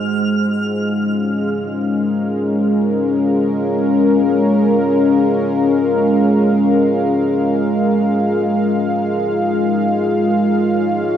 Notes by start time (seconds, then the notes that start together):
Already playing: G#3 D#4 C5
0.33 F4
0.55 F5
0.80 C#4
1.58 A#4
9.18 D#4
10.56 C#5